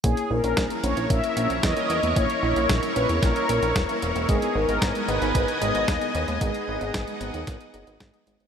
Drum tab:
HH |xx-xxxxxxxxxxxxx|xx-xxxxxxxxxxxxx|xx-xxxxxxxxxxxxx|xx-xxxxxxxxxxxxx|
SD |----o-------o---|----o---o---o---|----o-------o---|----o---o---o---|
BD |o---o---o---o---|o---o---o---o---|o---o---o---o---|o---o---o---o---|